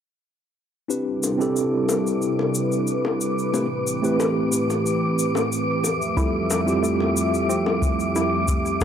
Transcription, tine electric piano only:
0, 0, Header, 1, 2, 480
1, 0, Start_track
1, 0, Key_signature, 0, "major"
1, 0, Tempo, 659341
1, 654, Time_signature, 4, 2, 24, 8
1, 6437, End_track
2, 0, Start_track
2, 0, Title_t, "Tine electric piano"
2, 0, Program_c, 0, 4
2, 644, Note_on_c, 0, 60, 58
2, 646, Note_on_c, 0, 62, 58
2, 647, Note_on_c, 0, 64, 55
2, 652, Note_on_c, 0, 67, 55
2, 656, Note_on_c, 0, 71, 67
2, 783, Control_c, 0, 64, 127
2, 984, Note_off_c, 0, 60, 0
2, 985, Note_off_c, 0, 62, 0
2, 986, Note_off_c, 0, 64, 0
2, 988, Note_off_c, 0, 67, 0
2, 991, Note_off_c, 0, 71, 0
2, 1001, Note_on_c, 0, 60, 81
2, 1010, Note_on_c, 0, 62, 79
2, 1016, Note_on_c, 0, 64, 77
2, 1024, Note_on_c, 0, 67, 82
2, 1028, Note_on_c, 0, 69, 99
2, 2538, Note_off_c, 0, 60, 0
2, 2542, Note_off_c, 0, 62, 0
2, 2545, Note_off_c, 0, 64, 0
2, 2549, Note_off_c, 0, 67, 0
2, 2551, Note_off_c, 0, 69, 0
2, 2568, Note_on_c, 0, 57, 75
2, 2572, Note_on_c, 0, 64, 67
2, 2574, Note_on_c, 0, 60, 73
2, 2574, Note_on_c, 0, 67, 68
2, 2580, Note_on_c, 0, 71, 88
2, 2582, Control_c, 0, 64, 0
2, 2653, Note_off_c, 0, 57, 0
2, 2655, Note_off_c, 0, 64, 0
2, 2656, Note_off_c, 0, 60, 0
2, 2656, Note_off_c, 0, 67, 0
2, 2659, Note_off_c, 0, 71, 0
2, 2726, Control_c, 0, 64, 127
2, 2925, Note_on_c, 0, 57, 84
2, 2929, Note_on_c, 0, 60, 85
2, 2936, Note_on_c, 0, 64, 82
2, 2939, Note_on_c, 0, 67, 82
2, 2950, Note_on_c, 0, 71, 93
2, 4233, Note_off_c, 0, 57, 0
2, 4235, Note_off_c, 0, 60, 0
2, 4239, Note_off_c, 0, 64, 0
2, 4240, Note_off_c, 0, 67, 0
2, 4246, Note_off_c, 0, 71, 0
2, 4264, Control_c, 0, 64, 0
2, 4407, Control_c, 0, 64, 127
2, 4487, Note_on_c, 0, 55, 65
2, 4487, Note_on_c, 0, 60, 63
2, 4493, Note_on_c, 0, 64, 61
2, 4497, Note_on_c, 0, 65, 58
2, 4500, Note_on_c, 0, 69, 70
2, 4826, Note_off_c, 0, 55, 0
2, 4826, Note_off_c, 0, 60, 0
2, 4829, Note_off_c, 0, 64, 0
2, 4831, Note_off_c, 0, 65, 0
2, 4833, Note_off_c, 0, 69, 0
2, 4843, Note_on_c, 0, 55, 89
2, 4850, Note_on_c, 0, 60, 83
2, 4856, Note_on_c, 0, 64, 89
2, 4861, Note_on_c, 0, 65, 81
2, 4870, Note_on_c, 0, 67, 101
2, 6378, Note_off_c, 0, 55, 0
2, 6382, Note_off_c, 0, 60, 0
2, 6385, Note_off_c, 0, 64, 0
2, 6387, Note_off_c, 0, 65, 0
2, 6392, Note_off_c, 0, 67, 0
2, 6413, Note_on_c, 0, 55, 83
2, 6423, Control_c, 0, 64, 0
2, 6437, Note_off_c, 0, 55, 0
2, 6437, End_track
0, 0, End_of_file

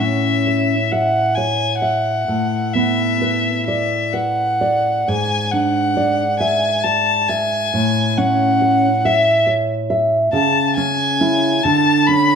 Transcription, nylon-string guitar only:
0, 0, Header, 1, 2, 480
1, 0, Start_track
1, 0, Key_signature, 3, "major"
1, 0, Tempo, 918836
1, 1192, Time_signature, 6, 3, 24, 8
1, 3115, Tempo, 882353
1, 4555, Tempo, 864553
1, 6633, End_track
2, 0, Start_track
2, 0, Title_t, "Nylon-string guitar"
2, 0, Program_c, 0, 24
2, 0, Note_on_c, 0, 45, 31
2, 0, Note_on_c, 0, 61, 24
2, 245, Note_on_c, 0, 73, 22
2, 386, Note_off_c, 0, 61, 0
2, 482, Note_on_c, 0, 76, 28
2, 623, Note_off_c, 0, 73, 0
2, 718, Note_on_c, 0, 73, 26
2, 857, Note_off_c, 0, 76, 0
2, 951, Note_on_c, 0, 76, 26
2, 1096, Note_off_c, 0, 73, 0
2, 1170, Note_off_c, 0, 45, 0
2, 1191, Note_off_c, 0, 76, 0
2, 1192, Note_on_c, 0, 45, 31
2, 1437, Note_on_c, 0, 59, 26
2, 1680, Note_on_c, 0, 71, 27
2, 1820, Note_off_c, 0, 59, 0
2, 1922, Note_on_c, 0, 74, 30
2, 2062, Note_off_c, 0, 71, 0
2, 2160, Note_on_c, 0, 71, 24
2, 2306, Note_off_c, 0, 74, 0
2, 2409, Note_on_c, 0, 74, 29
2, 2551, Note_off_c, 0, 71, 0
2, 2626, Note_off_c, 0, 45, 0
2, 2650, Note_off_c, 0, 74, 0
2, 2654, Note_on_c, 0, 44, 35
2, 2890, Note_on_c, 0, 62, 29
2, 3118, Note_on_c, 0, 74, 29
2, 3260, Note_off_c, 0, 62, 0
2, 3355, Note_on_c, 0, 76, 33
2, 3498, Note_off_c, 0, 74, 0
2, 3593, Note_on_c, 0, 74, 29
2, 3740, Note_off_c, 0, 76, 0
2, 3838, Note_on_c, 0, 76, 34
2, 3982, Note_off_c, 0, 74, 0
2, 4060, Note_off_c, 0, 44, 0
2, 4079, Note_off_c, 0, 76, 0
2, 4080, Note_on_c, 0, 45, 36
2, 4321, Note_on_c, 0, 61, 32
2, 4557, Note_on_c, 0, 73, 31
2, 4702, Note_off_c, 0, 61, 0
2, 4800, Note_on_c, 0, 76, 36
2, 4942, Note_off_c, 0, 73, 0
2, 5030, Note_on_c, 0, 73, 33
2, 5179, Note_off_c, 0, 76, 0
2, 5271, Note_on_c, 0, 76, 36
2, 5412, Note_off_c, 0, 73, 0
2, 5488, Note_off_c, 0, 45, 0
2, 5509, Note_off_c, 0, 76, 0
2, 5510, Note_on_c, 0, 49, 43
2, 5756, Note_on_c, 0, 61, 38
2, 5989, Note_off_c, 0, 61, 0
2, 5996, Note_on_c, 0, 61, 33
2, 5999, Note_on_c, 0, 64, 36
2, 6214, Note_off_c, 0, 49, 0
2, 6215, Note_off_c, 0, 61, 0
2, 6216, Note_off_c, 0, 64, 0
2, 6242, Note_on_c, 0, 50, 52
2, 6484, Note_on_c, 0, 61, 38
2, 6633, Note_off_c, 0, 50, 0
2, 6633, Note_off_c, 0, 61, 0
2, 6633, End_track
0, 0, End_of_file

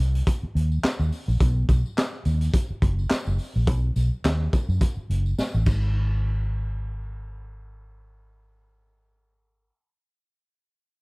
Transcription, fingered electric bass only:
0, 0, Header, 1, 3, 480
1, 0, Start_track
1, 0, Tempo, 568720
1, 1185, Time_signature, 4, 2, 24, 8
1, 9294, End_track
2, 0, Start_track
2, 0, Title_t, "Fingered electric bass"
2, 0, Program_c, 0, 33
2, 0, Note_on_c, 0, 36, 86
2, 176, Note_off_c, 0, 36, 0
2, 466, Note_on_c, 0, 39, 80
2, 655, Note_off_c, 0, 39, 0
2, 840, Note_on_c, 0, 39, 82
2, 923, Note_off_c, 0, 39, 0
2, 1081, Note_on_c, 0, 34, 93
2, 1163, Note_off_c, 0, 34, 0
2, 1184, Note_on_c, 0, 35, 118
2, 1373, Note_off_c, 0, 35, 0
2, 1423, Note_on_c, 0, 35, 98
2, 1529, Note_off_c, 0, 35, 0
2, 1905, Note_on_c, 0, 39, 95
2, 2093, Note_off_c, 0, 39, 0
2, 2380, Note_on_c, 0, 30, 88
2, 2570, Note_off_c, 0, 30, 0
2, 2762, Note_on_c, 0, 30, 99
2, 2843, Note_off_c, 0, 30, 0
2, 3002, Note_on_c, 0, 34, 96
2, 3100, Note_off_c, 0, 34, 0
2, 3100, Note_on_c, 0, 35, 122
2, 3289, Note_off_c, 0, 35, 0
2, 3344, Note_on_c, 0, 35, 84
2, 3448, Note_off_c, 0, 35, 0
2, 3584, Note_on_c, 0, 39, 89
2, 3771, Note_off_c, 0, 39, 0
2, 3955, Note_on_c, 0, 42, 93
2, 4038, Note_off_c, 0, 42, 0
2, 4302, Note_on_c, 0, 30, 81
2, 4490, Note_off_c, 0, 30, 0
2, 4680, Note_on_c, 0, 33, 91
2, 4761, Note_off_c, 0, 33, 0
2, 4781, Note_on_c, 0, 32, 91
2, 8177, Note_off_c, 0, 32, 0
2, 9294, End_track
3, 0, Start_track
3, 0, Title_t, "Muted fingered electric bass strokes"
3, 365, Note_on_c, 9, 29, 46
3, 449, Note_off_c, 9, 29, 0
3, 706, Note_on_c, 9, 29, 42
3, 791, Note_off_c, 9, 29, 0
3, 2282, Note_on_c, 9, 29, 44
3, 2366, Note_off_c, 9, 29, 0
3, 4195, Note_on_c, 9, 29, 46
3, 4279, Note_off_c, 9, 29, 0
3, 4545, Note_on_c, 9, 29, 50
3, 4629, Note_off_c, 9, 29, 0
3, 9294, End_track
0, 0, End_of_file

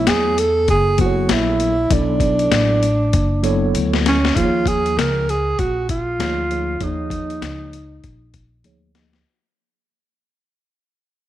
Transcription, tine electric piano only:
0, 0, Header, 1, 2, 480
1, 0, Start_track
1, 0, Tempo, 612245
1, 1494, Time_signature, 4, 2, 24, 8
1, 8847, End_track
2, 0, Start_track
2, 0, Title_t, "Tine electric piano"
2, 0, Program_c, 0, 4
2, 0, Note_on_c, 0, 54, 68
2, 0, Note_on_c, 0, 57, 65
2, 0, Note_on_c, 0, 59, 66
2, 0, Note_on_c, 0, 64, 68
2, 0, Note_on_c, 0, 73, 82
2, 317, Note_off_c, 0, 54, 0
2, 318, Note_off_c, 0, 59, 0
2, 318, Note_off_c, 0, 64, 0
2, 322, Note_off_c, 0, 57, 0
2, 323, Note_off_c, 0, 73, 0
2, 768, Note_on_c, 0, 54, 71
2, 773, Note_on_c, 0, 59, 64
2, 774, Note_on_c, 0, 64, 64
2, 778, Note_on_c, 0, 69, 63
2, 779, Note_on_c, 0, 72, 62
2, 828, Note_on_c, 0, 73, 77
2, 839, Note_off_c, 0, 72, 0
2, 1344, Note_off_c, 0, 54, 0
2, 1347, Note_off_c, 0, 59, 0
2, 1347, Note_off_c, 0, 64, 0
2, 1349, Note_off_c, 0, 69, 0
2, 1374, Note_off_c, 0, 73, 0
2, 1493, Note_on_c, 0, 54, 73
2, 1494, Note_on_c, 0, 59, 66
2, 1496, Note_on_c, 0, 64, 67
2, 1502, Note_on_c, 0, 69, 65
2, 1505, Note_on_c, 0, 74, 80
2, 2240, Note_off_c, 0, 54, 0
2, 2241, Note_off_c, 0, 59, 0
2, 2242, Note_off_c, 0, 64, 0
2, 2245, Note_off_c, 0, 69, 0
2, 2246, Note_off_c, 0, 74, 0
2, 2686, Note_on_c, 0, 54, 83
2, 2691, Note_on_c, 0, 59, 75
2, 2691, Note_on_c, 0, 64, 75
2, 2695, Note_on_c, 0, 69, 77
2, 2701, Note_on_c, 0, 73, 95
2, 3263, Note_off_c, 0, 54, 0
2, 3266, Note_off_c, 0, 59, 0
2, 3266, Note_off_c, 0, 64, 0
2, 3268, Note_off_c, 0, 69, 0
2, 3271, Note_off_c, 0, 73, 0
2, 3414, Note_on_c, 0, 53, 69
2, 3418, Note_on_c, 0, 58, 62
2, 3421, Note_on_c, 0, 63, 62
2, 3423, Note_on_c, 0, 68, 63
2, 3426, Note_on_c, 0, 72, 60
2, 3479, Note_on_c, 0, 73, 78
2, 3482, Note_off_c, 0, 72, 0
2, 4161, Note_off_c, 0, 53, 0
2, 4163, Note_off_c, 0, 58, 0
2, 4165, Note_off_c, 0, 63, 0
2, 4166, Note_off_c, 0, 68, 0
2, 4194, Note_off_c, 0, 73, 0
2, 4850, Note_on_c, 0, 53, 70
2, 4853, Note_on_c, 0, 58, 60
2, 4858, Note_on_c, 0, 63, 60
2, 4859, Note_on_c, 0, 68, 63
2, 4860, Note_on_c, 0, 73, 73
2, 5050, Note_off_c, 0, 53, 0
2, 5051, Note_off_c, 0, 58, 0
2, 5054, Note_off_c, 0, 63, 0
2, 5054, Note_off_c, 0, 68, 0
2, 5054, Note_off_c, 0, 73, 0
2, 5094, Note_on_c, 0, 53, 64
2, 5096, Note_on_c, 0, 58, 58
2, 5099, Note_on_c, 0, 63, 58
2, 5102, Note_on_c, 0, 68, 59
2, 5103, Note_on_c, 0, 73, 66
2, 5292, Note_off_c, 0, 53, 0
2, 5293, Note_off_c, 0, 58, 0
2, 5294, Note_off_c, 0, 63, 0
2, 5296, Note_off_c, 0, 68, 0
2, 5296, Note_off_c, 0, 73, 0
2, 5331, Note_on_c, 0, 53, 62
2, 5332, Note_on_c, 0, 58, 59
2, 5336, Note_on_c, 0, 63, 60
2, 5337, Note_on_c, 0, 68, 64
2, 5341, Note_on_c, 0, 73, 74
2, 6079, Note_off_c, 0, 53, 0
2, 6080, Note_off_c, 0, 58, 0
2, 6082, Note_off_c, 0, 63, 0
2, 6083, Note_off_c, 0, 68, 0
2, 6085, Note_off_c, 0, 73, 0
2, 6773, Note_on_c, 0, 53, 76
2, 6778, Note_on_c, 0, 63, 67
2, 6779, Note_on_c, 0, 58, 66
2, 6784, Note_on_c, 0, 68, 66
2, 6788, Note_on_c, 0, 73, 86
2, 6971, Note_off_c, 0, 53, 0
2, 6974, Note_off_c, 0, 58, 0
2, 6974, Note_off_c, 0, 63, 0
2, 6977, Note_off_c, 0, 68, 0
2, 6978, Note_off_c, 0, 73, 0
2, 7011, Note_on_c, 0, 53, 68
2, 7014, Note_on_c, 0, 58, 67
2, 7019, Note_on_c, 0, 63, 67
2, 7019, Note_on_c, 0, 75, 73
2, 7021, Note_on_c, 0, 68, 63
2, 7210, Note_off_c, 0, 53, 0
2, 7212, Note_off_c, 0, 58, 0
2, 7214, Note_off_c, 0, 63, 0
2, 7214, Note_off_c, 0, 75, 0
2, 7215, Note_off_c, 0, 68, 0
2, 8847, End_track
0, 0, End_of_file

